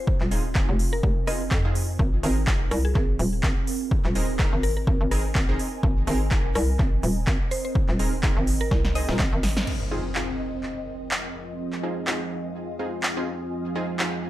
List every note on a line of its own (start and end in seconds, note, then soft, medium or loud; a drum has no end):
0.00 1.98 C4 medium
0.00 3.52 F4 medium
0.00 1.99 D#5 medium
0.00 1.99 G#5 medium
0.07 kick loud
0.21 0.67 D#1 medium
0.21 clap soft
0.31 0.44 C4 medium
0.31 0.44 D#4 medium
0.31 0.44 F4 medium
0.31 0.44 G#4 medium
0.31 open hi-hat loud
0.55 0.68 C4 medium
0.55 0.68 D#4 medium
0.55 0.68 F4 medium
0.55 0.68 G#4 medium
0.55 kick loud
0.55 clap loud
0.69 1.02 F1 medium
0.79 open hi-hat loud
0.93 1.06 A#4 loud
1.03 1.50 F1 medium
1.03 kick loud
1.27 1.40 C4 medium
1.27 1.40 D#4 medium
1.27 1.40 F4 medium
1.27 1.40 G#4 medium
1.27 1.75 D#5 medium
1.27 cross-stick medium
1.27 open hi-hat loud
1.51 1.98 F2 medium
1.51 kick loud
1.51 clap loud
1.65 1.74 C4 medium
1.65 1.74 D#4 medium
1.65 1.74 F4 medium
1.65 1.74 G#4 loud
1.75 open hi-hat loud
1.99 2.22 G#1 loud
1.99 14.30 C4 medium
1.99 kick loud
2.23 2.70 G#1 medium
2.23 2.35 C4 medium
2.23 2.35 D#4 medium
2.23 2.35 G#4 medium
2.23 2.35 A#4 loud
2.23 11.00 A#4 medium
2.23 open hi-hat loud
2.47 2.60 C4 medium
2.47 2.59 D#4 medium
2.47 2.59 G#4 medium
2.47 2.60 A#4 medium
2.47 kick loud
2.47 clap loud
2.71 2.94 C2 medium
2.71 2.82 A#4 medium
2.71 cross-stick medium
2.71 open hi-hat loud
2.85 2.92 G#4 loud
2.95 3.18 G#1 medium
2.95 3.04 G#4 medium
2.95 kick loud
2.95 clap soft
3.19 3.42 D#1 medium
3.19 open hi-hat loud
3.35 14.30 D#5 medium
3.43 3.55 G#1 loud
3.43 kick loud
3.43 clap loud
3.67 open hi-hat loud
3.91 kick loud
4.03 4.51 D#1 loud
4.03 7.67 G#5 medium
4.03 clap soft
4.15 4.27 C4 medium
4.15 4.27 D#4 medium
4.15 4.27 G#4 medium
4.15 4.27 A#4 medium
4.15 open hi-hat loud
4.39 4.51 C4 medium
4.39 4.51 D#4 medium
4.39 4.51 G#4 medium
4.39 4.51 A#4 medium
4.39 kick loud
4.39 clap loud
4.53 4.86 G#1 medium
4.63 4.72 A#4 medium
4.63 open hi-hat medium
4.77 4.84 A#4 medium
4.87 4.99 G#1 medium
4.87 kick loud
5.01 5.34 G#1 medium
5.11 5.23 C4 medium
5.11 5.23 D#4 medium
5.11 5.23 G#4 medium
5.11 5.23 A#4 medium
5.11 cross-stick medium
5.11 open hi-hat loud
5.35 5.58 G#1 loud
5.35 kick loud
5.35 clap loud
5.49 5.58 C4 medium
5.49 5.58 D#4 medium
5.49 5.58 G#4 medium
5.49 5.58 A#4 loud
5.59 open hi-hat loud
5.83 6.06 G#1 loud
5.83 kick loud
6.07 6.54 G#1 loud
6.07 6.19 C4 loud
6.07 6.19 D#4 medium
6.07 6.19 G#4 medium
6.07 6.19 A#4 loud
6.07 open hi-hat medium
6.31 6.43 C4 medium
6.31 6.43 D#4 medium
6.31 6.43 G#4 medium
6.31 6.43 A#4 medium
6.31 kick loud
6.31 clap loud
6.55 6.78 C2 loud
6.55 6.66 A#4 medium
6.55 cross-stick medium
6.55 open hi-hat medium
6.79 7.02 G#1 medium
6.79 kick loud
6.79 clap soft
7.03 7.26 D#1 medium
7.03 open hi-hat loud
7.27 7.39 G#1 loud
7.27 kick loud
7.27 clap loud
7.51 7.60 C5 medium
7.51 9.67 G5 medium
7.51 open hi-hat loud
7.65 7.72 C5 medium
7.75 kick loud
7.89 8.35 D#1 loud
7.89 clap soft
7.99 8.11 C4 medium
7.99 8.11 D#4 medium
7.99 8.11 G#4 medium
7.99 8.11 A#4 medium
7.99 open hi-hat loud
8.23 8.35 C4 medium
8.23 8.35 D#4 medium
8.23 8.35 G#4 medium
8.23 8.35 A#4 loud
8.23 kick loud
8.23 clap loud
8.37 8.70 G#1 loud
8.47 open hi-hat loud
8.61 8.74 A#4 loud
8.71 9.07 C2 medium
8.71 kick loud
8.71 snare medium
8.85 snare medium
8.95 9.07 C4 medium
8.95 9.07 D#4 medium
8.95 9.07 G#4 medium
8.95 9.07 D#5 loud
8.95 9.43 D#5 medium
8.95 open hi-hat medium
9.09 9.18 D#1 loud
9.09 9.66 C4 medium
9.09 9.66 D#4 medium
9.09 9.66 G#4 medium
9.09 9.66 A#4 loud
9.09 snare medium
9.19 9.31 G#1 medium
9.19 kick loud
9.19 snare medium
9.19 clap loud
9.33 9.66 G#1 loud
9.43 snare loud
9.43 open hi-hat loud
9.57 snare medium
9.67 14.30 F3 medium
9.67 14.30 F4 medium
9.67 14.30 G#4 medium
9.67 14.30 D#5 medium
9.67 crash medium
9.67 impact medium
9.91 10.03 C4 medium
9.91 10.03 D#4 medium
9.91 10.03 F4 medium
9.91 10.03 G#4 loud
10.15 10.27 C4 medium
10.15 10.27 D#4 medium
10.15 14.30 F4 medium
10.15 10.27 F4 medium
10.15 10.27 G#4 medium
10.15 clap loud
10.63 clap soft
11.11 clap loud
11.30 14.30 G#5 medium
11.73 clap soft
11.83 11.95 C4 medium
11.83 11.95 D#4 medium
11.83 11.95 F4 medium
11.83 11.95 G#4 medium
12.07 12.19 C4 medium
12.07 12.19 D#4 medium
12.07 12.19 F4 medium
12.07 12.19 G#4 medium
12.07 clap loud
12.79 12.91 C4 medium
12.79 12.91 D#4 medium
12.79 12.91 F4 medium
12.79 12.91 G#4 medium
13.03 clap loud
13.17 13.26 C4 medium
13.17 13.26 D#4 medium
13.17 13.26 F4 medium
13.17 13.26 G#4 loud
13.75 13.88 C4 medium
13.75 13.88 D#4 medium
13.75 13.88 F4 medium
13.75 13.88 G#4 loud
13.99 14.11 C4 medium
13.99 14.11 D#4 medium
13.99 14.11 F4 medium
13.99 14.11 G#4 medium
13.99 clap loud